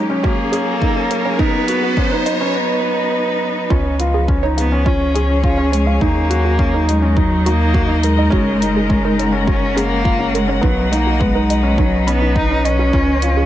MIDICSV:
0, 0, Header, 1, 8, 480
1, 0, Start_track
1, 0, Key_signature, 6, "major"
1, 0, Tempo, 576923
1, 1165, Time_signature, 4, 2, 24, 8
1, 11196, End_track
2, 0, Start_track
2, 0, Title_t, "Synth arpeggio sound"
2, 0, Program_c, 0, 84
2, 195, Note_on_c, 0, 66, 99
2, 251, Note_off_c, 0, 66, 0
2, 433, Note_on_c, 0, 68, 102
2, 490, Note_off_c, 0, 68, 0
2, 926, Note_on_c, 0, 70, 78
2, 1001, Note_off_c, 0, 70, 0
2, 1041, Note_on_c, 0, 73, 77
2, 1119, Note_off_c, 0, 73, 0
2, 1156, Note_on_c, 0, 63, 106
2, 1211, Note_off_c, 0, 63, 0
2, 1524, Note_on_c, 0, 66, 76
2, 1575, Note_off_c, 0, 66, 0
2, 1760, Note_on_c, 0, 71, 101
2, 1813, Note_off_c, 0, 71, 0
2, 1881, Note_on_c, 0, 75, 72
2, 1959, Note_off_c, 0, 75, 0
2, 3081, Note_on_c, 0, 65, 105
2, 3133, Note_off_c, 0, 65, 0
2, 3446, Note_on_c, 0, 68, 76
2, 3496, Note_off_c, 0, 68, 0
2, 3685, Note_on_c, 0, 73, 103
2, 3735, Note_off_c, 0, 73, 0
2, 3806, Note_on_c, 0, 77, 69
2, 3881, Note_off_c, 0, 77, 0
2, 4045, Note_on_c, 0, 65, 98
2, 4096, Note_off_c, 0, 65, 0
2, 4287, Note_on_c, 0, 68, 99
2, 4337, Note_off_c, 0, 68, 0
2, 4761, Note_on_c, 0, 73, 78
2, 4839, Note_off_c, 0, 73, 0
2, 4884, Note_on_c, 0, 77, 73
2, 4960, Note_off_c, 0, 77, 0
2, 5005, Note_on_c, 0, 63, 95
2, 5055, Note_off_c, 0, 63, 0
2, 5364, Note_on_c, 0, 66, 76
2, 5415, Note_off_c, 0, 66, 0
2, 5608, Note_on_c, 0, 70, 96
2, 5657, Note_off_c, 0, 70, 0
2, 5727, Note_on_c, 0, 75, 78
2, 5802, Note_off_c, 0, 75, 0
2, 5965, Note_on_c, 0, 63, 100
2, 6016, Note_off_c, 0, 63, 0
2, 6207, Note_on_c, 0, 66, 102
2, 6257, Note_off_c, 0, 66, 0
2, 6690, Note_on_c, 0, 70, 81
2, 6763, Note_off_c, 0, 70, 0
2, 6810, Note_on_c, 0, 75, 76
2, 6883, Note_off_c, 0, 75, 0
2, 6927, Note_on_c, 0, 66, 99
2, 6977, Note_off_c, 0, 66, 0
2, 7290, Note_on_c, 0, 68, 77
2, 7338, Note_off_c, 0, 68, 0
2, 7528, Note_on_c, 0, 70, 105
2, 7577, Note_off_c, 0, 70, 0
2, 7651, Note_on_c, 0, 73, 70
2, 7724, Note_off_c, 0, 73, 0
2, 7885, Note_on_c, 0, 66, 104
2, 7935, Note_off_c, 0, 66, 0
2, 8124, Note_on_c, 0, 68, 95
2, 8175, Note_off_c, 0, 68, 0
2, 8606, Note_on_c, 0, 70, 77
2, 8681, Note_off_c, 0, 70, 0
2, 8728, Note_on_c, 0, 73, 78
2, 8802, Note_off_c, 0, 73, 0
2, 8847, Note_on_c, 0, 63, 109
2, 8897, Note_off_c, 0, 63, 0
2, 9210, Note_on_c, 0, 66, 79
2, 9258, Note_off_c, 0, 66, 0
2, 9446, Note_on_c, 0, 71, 103
2, 9496, Note_off_c, 0, 71, 0
2, 9569, Note_on_c, 0, 75, 73
2, 9643, Note_off_c, 0, 75, 0
2, 9805, Note_on_c, 0, 63, 107
2, 9856, Note_off_c, 0, 63, 0
2, 10044, Note_on_c, 0, 83, 104
2, 10095, Note_off_c, 0, 83, 0
2, 10168, Note_on_c, 0, 63, 83
2, 10217, Note_off_c, 0, 63, 0
2, 10525, Note_on_c, 0, 75, 100
2, 10601, Note_off_c, 0, 75, 0
2, 10641, Note_on_c, 0, 66, 79
2, 10694, Note_off_c, 0, 66, 0
2, 10758, Note_on_c, 0, 65, 103
2, 10812, Note_off_c, 0, 65, 0
2, 11122, Note_on_c, 0, 68, 75
2, 11174, Note_off_c, 0, 68, 0
2, 11196, End_track
3, 0, Start_track
3, 0, Title_t, "String quartet"
3, 0, Program_c, 1, 48
3, 0, Note_on_c, 1, 54, 77
3, 0, Note_on_c, 1, 58, 72
3, 0, Note_on_c, 1, 61, 76
3, 0, Note_on_c, 1, 68, 64
3, 1164, Note_off_c, 1, 58, 0
3, 1348, Note_on_c, 1, 59, 82
3, 1685, Note_on_c, 1, 63, 84
3, 1712, Note_on_c, 1, 71, 92
3, 1930, Note_off_c, 1, 61, 0
3, 1930, Note_off_c, 1, 68, 0
3, 3077, Note_off_c, 1, 54, 0
3, 3084, Note_on_c, 1, 53, 82
3, 3346, Note_on_c, 1, 61, 73
3, 3676, Note_on_c, 1, 73, 71
3, 3847, Note_off_c, 1, 59, 0
3, 3851, Note_off_c, 1, 63, 0
3, 3853, Note_off_c, 1, 71, 0
3, 3959, Note_on_c, 1, 68, 82
3, 5004, Note_off_c, 1, 53, 0
3, 5007, Note_on_c, 1, 54, 83
3, 5430, Note_on_c, 1, 63, 89
3, 5774, Note_off_c, 1, 73, 0
3, 5778, Note_off_c, 1, 61, 0
3, 5778, Note_off_c, 1, 68, 0
3, 5841, Note_on_c, 1, 70, 82
3, 5871, Note_on_c, 1, 75, 69
3, 6921, Note_on_c, 1, 56, 84
3, 6926, Note_off_c, 1, 54, 0
3, 7025, Note_on_c, 1, 61, 72
3, 7669, Note_on_c, 1, 78, 72
3, 7694, Note_off_c, 1, 75, 0
3, 7698, Note_off_c, 1, 63, 0
3, 8843, Note_off_c, 1, 56, 0
3, 8847, Note_off_c, 1, 70, 0
3, 8847, Note_on_c, 1, 54, 82
3, 8932, Note_on_c, 1, 63, 97
3, 9548, Note_on_c, 1, 71, 75
3, 9610, Note_off_c, 1, 61, 0
3, 10764, Note_on_c, 1, 53, 84
3, 10765, Note_off_c, 1, 78, 0
3, 10766, Note_off_c, 1, 54, 0
3, 10868, Note_on_c, 1, 61, 68
3, 11139, Note_on_c, 1, 68, 81
3, 11196, Note_off_c, 1, 53, 0
3, 11196, Note_off_c, 1, 61, 0
3, 11196, Note_off_c, 1, 63, 0
3, 11196, Note_off_c, 1, 68, 0
3, 11196, Note_off_c, 1, 71, 0
3, 11196, End_track
4, 0, Start_track
4, 0, Title_t, "Felt piano"
4, 0, Program_c, 2, 0
4, 80, Note_on_c, 2, 61, 79
4, 178, Note_off_c, 2, 61, 0
4, 196, Note_on_c, 2, 61, 86
4, 393, Note_off_c, 2, 61, 0
4, 439, Note_on_c, 2, 61, 81
4, 634, Note_off_c, 2, 61, 0
4, 679, Note_on_c, 2, 63, 81
4, 778, Note_off_c, 2, 63, 0
4, 797, Note_on_c, 2, 61, 75
4, 993, Note_off_c, 2, 61, 0
4, 1041, Note_on_c, 2, 61, 80
4, 1139, Note_off_c, 2, 61, 0
4, 1161, Note_on_c, 2, 63, 102
4, 1355, Note_off_c, 2, 63, 0
4, 1402, Note_on_c, 2, 66, 75
4, 1596, Note_off_c, 2, 66, 0
4, 1642, Note_on_c, 2, 61, 84
4, 1739, Note_off_c, 2, 61, 0
4, 1758, Note_on_c, 2, 63, 77
4, 1954, Note_off_c, 2, 63, 0
4, 2002, Note_on_c, 2, 61, 82
4, 2100, Note_off_c, 2, 61, 0
4, 3086, Note_on_c, 2, 61, 93
4, 3278, Note_off_c, 2, 61, 0
4, 3324, Note_on_c, 2, 65, 78
4, 3517, Note_off_c, 2, 65, 0
4, 3563, Note_on_c, 2, 61, 81
4, 3660, Note_off_c, 2, 61, 0
4, 3686, Note_on_c, 2, 63, 77
4, 3878, Note_off_c, 2, 63, 0
4, 3925, Note_on_c, 2, 61, 78
4, 4021, Note_off_c, 2, 61, 0
4, 4041, Note_on_c, 2, 61, 82
4, 4235, Note_off_c, 2, 61, 0
4, 4279, Note_on_c, 2, 61, 81
4, 4474, Note_off_c, 2, 61, 0
4, 4523, Note_on_c, 2, 65, 84
4, 4620, Note_off_c, 2, 65, 0
4, 4636, Note_on_c, 2, 61, 79
4, 4832, Note_off_c, 2, 61, 0
4, 4878, Note_on_c, 2, 61, 75
4, 4977, Note_off_c, 2, 61, 0
4, 5002, Note_on_c, 2, 63, 91
4, 5196, Note_off_c, 2, 63, 0
4, 5242, Note_on_c, 2, 66, 75
4, 5436, Note_off_c, 2, 66, 0
4, 5481, Note_on_c, 2, 61, 86
4, 5579, Note_off_c, 2, 61, 0
4, 5606, Note_on_c, 2, 63, 81
4, 5798, Note_off_c, 2, 63, 0
4, 5841, Note_on_c, 2, 61, 79
4, 5939, Note_off_c, 2, 61, 0
4, 5961, Note_on_c, 2, 63, 89
4, 6155, Note_off_c, 2, 63, 0
4, 6202, Note_on_c, 2, 63, 80
4, 6396, Note_off_c, 2, 63, 0
4, 6438, Note_on_c, 2, 66, 85
4, 6537, Note_off_c, 2, 66, 0
4, 6550, Note_on_c, 2, 63, 78
4, 6749, Note_off_c, 2, 63, 0
4, 6791, Note_on_c, 2, 63, 80
4, 6893, Note_off_c, 2, 63, 0
4, 6908, Note_on_c, 2, 61, 105
4, 7108, Note_off_c, 2, 61, 0
4, 7155, Note_on_c, 2, 63, 77
4, 7352, Note_off_c, 2, 63, 0
4, 7397, Note_on_c, 2, 61, 83
4, 7497, Note_off_c, 2, 61, 0
4, 7522, Note_on_c, 2, 63, 75
4, 7716, Note_off_c, 2, 63, 0
4, 7755, Note_on_c, 2, 61, 83
4, 7855, Note_off_c, 2, 61, 0
4, 7878, Note_on_c, 2, 61, 87
4, 8073, Note_off_c, 2, 61, 0
4, 8113, Note_on_c, 2, 61, 84
4, 8310, Note_off_c, 2, 61, 0
4, 8356, Note_on_c, 2, 65, 87
4, 8456, Note_off_c, 2, 65, 0
4, 8477, Note_on_c, 2, 61, 78
4, 8673, Note_off_c, 2, 61, 0
4, 8712, Note_on_c, 2, 61, 80
4, 8814, Note_off_c, 2, 61, 0
4, 8830, Note_on_c, 2, 59, 97
4, 9029, Note_off_c, 2, 59, 0
4, 9079, Note_on_c, 2, 63, 78
4, 9274, Note_off_c, 2, 63, 0
4, 9315, Note_on_c, 2, 59, 84
4, 9415, Note_off_c, 2, 59, 0
4, 9439, Note_on_c, 2, 63, 76
4, 9634, Note_off_c, 2, 63, 0
4, 9675, Note_on_c, 2, 61, 81
4, 9775, Note_off_c, 2, 61, 0
4, 9796, Note_on_c, 2, 61, 85
4, 9992, Note_off_c, 2, 61, 0
4, 10039, Note_on_c, 2, 61, 75
4, 10234, Note_off_c, 2, 61, 0
4, 10274, Note_on_c, 2, 63, 82
4, 10375, Note_off_c, 2, 63, 0
4, 10404, Note_on_c, 2, 61, 80
4, 10597, Note_off_c, 2, 61, 0
4, 10645, Note_on_c, 2, 61, 75
4, 10741, Note_off_c, 2, 61, 0
4, 10765, Note_on_c, 2, 61, 102
4, 10958, Note_off_c, 2, 61, 0
4, 11002, Note_on_c, 2, 65, 74
4, 11196, Note_off_c, 2, 65, 0
4, 11196, End_track
5, 0, Start_track
5, 0, Title_t, "Cello"
5, 0, Program_c, 3, 42
5, 205, Note_on_c, 3, 58, 100
5, 1164, Note_on_c, 3, 59, 115
5, 1177, Note_off_c, 3, 58, 0
5, 2124, Note_off_c, 3, 59, 0
5, 3810, Note_on_c, 3, 59, 90
5, 4051, Note_on_c, 3, 61, 85
5, 4063, Note_off_c, 3, 59, 0
5, 4522, Note_off_c, 3, 61, 0
5, 4527, Note_on_c, 3, 61, 94
5, 4771, Note_on_c, 3, 56, 84
5, 4783, Note_off_c, 3, 61, 0
5, 5005, Note_on_c, 3, 58, 98
5, 5017, Note_off_c, 3, 56, 0
5, 5740, Note_on_c, 3, 56, 88
5, 5753, Note_off_c, 3, 58, 0
5, 5975, Note_on_c, 3, 54, 88
5, 5988, Note_off_c, 3, 56, 0
5, 6218, Note_on_c, 3, 58, 108
5, 6230, Note_off_c, 3, 54, 0
5, 6690, Note_on_c, 3, 56, 107
5, 6703, Note_off_c, 3, 58, 0
5, 7887, Note_off_c, 3, 56, 0
5, 7902, Note_on_c, 3, 61, 102
5, 8136, Note_on_c, 3, 58, 117
5, 8149, Note_off_c, 3, 61, 0
5, 8612, Note_on_c, 3, 56, 99
5, 8625, Note_off_c, 3, 58, 0
5, 8856, Note_on_c, 3, 54, 99
5, 8868, Note_off_c, 3, 56, 0
5, 9090, Note_on_c, 3, 58, 100
5, 9103, Note_off_c, 3, 54, 0
5, 9328, Note_on_c, 3, 56, 96
5, 9341, Note_off_c, 3, 58, 0
5, 9802, Note_on_c, 3, 54, 87
5, 9814, Note_off_c, 3, 56, 0
5, 10041, Note_on_c, 3, 59, 104
5, 10054, Note_off_c, 3, 54, 0
5, 10282, Note_on_c, 3, 63, 102
5, 10294, Note_off_c, 3, 59, 0
5, 10520, Note_on_c, 3, 61, 103
5, 10532, Note_off_c, 3, 63, 0
5, 11196, Note_off_c, 3, 61, 0
5, 11196, End_track
6, 0, Start_track
6, 0, Title_t, "Analog synth bass"
6, 0, Program_c, 4, 38
6, 3083, Note_on_c, 4, 37, 82
6, 4980, Note_off_c, 4, 37, 0
6, 5002, Note_on_c, 4, 39, 83
6, 6899, Note_off_c, 4, 39, 0
6, 6923, Note_on_c, 4, 30, 80
6, 8820, Note_off_c, 4, 30, 0
6, 8843, Note_on_c, 4, 35, 90
6, 10740, Note_off_c, 4, 35, 0
6, 10760, Note_on_c, 4, 37, 89
6, 11196, Note_off_c, 4, 37, 0
6, 11196, End_track
7, 0, Start_track
7, 0, Title_t, "Riser"
7, 0, Program_c, 5, 103
7, 0, Note_on_c, 5, 60, 66
7, 2121, Note_off_c, 5, 60, 0
7, 11196, End_track
8, 0, Start_track
8, 0, Title_t, "Drums"
8, 200, Note_on_c, 9, 36, 102
8, 283, Note_off_c, 9, 36, 0
8, 440, Note_on_c, 9, 42, 61
8, 523, Note_off_c, 9, 42, 0
8, 679, Note_on_c, 9, 36, 108
8, 762, Note_off_c, 9, 36, 0
8, 921, Note_on_c, 9, 42, 69
8, 1005, Note_off_c, 9, 42, 0
8, 1159, Note_on_c, 9, 36, 110
8, 1242, Note_off_c, 9, 36, 0
8, 1399, Note_on_c, 9, 42, 67
8, 1482, Note_off_c, 9, 42, 0
8, 1638, Note_on_c, 9, 36, 108
8, 1722, Note_off_c, 9, 36, 0
8, 1882, Note_on_c, 9, 42, 63
8, 1965, Note_off_c, 9, 42, 0
8, 3082, Note_on_c, 9, 36, 98
8, 3165, Note_off_c, 9, 36, 0
8, 3324, Note_on_c, 9, 42, 63
8, 3408, Note_off_c, 9, 42, 0
8, 3563, Note_on_c, 9, 36, 105
8, 3647, Note_off_c, 9, 36, 0
8, 3810, Note_on_c, 9, 42, 62
8, 3893, Note_off_c, 9, 42, 0
8, 4043, Note_on_c, 9, 36, 96
8, 4126, Note_off_c, 9, 36, 0
8, 4289, Note_on_c, 9, 42, 64
8, 4372, Note_off_c, 9, 42, 0
8, 4522, Note_on_c, 9, 36, 97
8, 4605, Note_off_c, 9, 36, 0
8, 4770, Note_on_c, 9, 42, 60
8, 4854, Note_off_c, 9, 42, 0
8, 5002, Note_on_c, 9, 36, 98
8, 5086, Note_off_c, 9, 36, 0
8, 5248, Note_on_c, 9, 42, 67
8, 5331, Note_off_c, 9, 42, 0
8, 5482, Note_on_c, 9, 36, 109
8, 5565, Note_off_c, 9, 36, 0
8, 5731, Note_on_c, 9, 42, 60
8, 5814, Note_off_c, 9, 42, 0
8, 5962, Note_on_c, 9, 36, 103
8, 6046, Note_off_c, 9, 36, 0
8, 6210, Note_on_c, 9, 42, 67
8, 6293, Note_off_c, 9, 42, 0
8, 6442, Note_on_c, 9, 36, 110
8, 6525, Note_off_c, 9, 36, 0
8, 6685, Note_on_c, 9, 42, 65
8, 6768, Note_off_c, 9, 42, 0
8, 6924, Note_on_c, 9, 36, 103
8, 7007, Note_off_c, 9, 36, 0
8, 7173, Note_on_c, 9, 42, 71
8, 7256, Note_off_c, 9, 42, 0
8, 7403, Note_on_c, 9, 36, 107
8, 7487, Note_off_c, 9, 36, 0
8, 7650, Note_on_c, 9, 42, 62
8, 7733, Note_off_c, 9, 42, 0
8, 7884, Note_on_c, 9, 36, 110
8, 7967, Note_off_c, 9, 36, 0
8, 8133, Note_on_c, 9, 42, 67
8, 8216, Note_off_c, 9, 42, 0
8, 8363, Note_on_c, 9, 36, 108
8, 8446, Note_off_c, 9, 36, 0
8, 8611, Note_on_c, 9, 42, 69
8, 8695, Note_off_c, 9, 42, 0
8, 8843, Note_on_c, 9, 36, 103
8, 8926, Note_off_c, 9, 36, 0
8, 9091, Note_on_c, 9, 42, 72
8, 9174, Note_off_c, 9, 42, 0
8, 9323, Note_on_c, 9, 36, 109
8, 9406, Note_off_c, 9, 36, 0
8, 9569, Note_on_c, 9, 42, 65
8, 9652, Note_off_c, 9, 42, 0
8, 9802, Note_on_c, 9, 36, 105
8, 9885, Note_off_c, 9, 36, 0
8, 10048, Note_on_c, 9, 42, 64
8, 10131, Note_off_c, 9, 42, 0
8, 10281, Note_on_c, 9, 36, 104
8, 10364, Note_off_c, 9, 36, 0
8, 10528, Note_on_c, 9, 42, 63
8, 10611, Note_off_c, 9, 42, 0
8, 10760, Note_on_c, 9, 36, 105
8, 10844, Note_off_c, 9, 36, 0
8, 11001, Note_on_c, 9, 42, 67
8, 11084, Note_off_c, 9, 42, 0
8, 11196, End_track
0, 0, End_of_file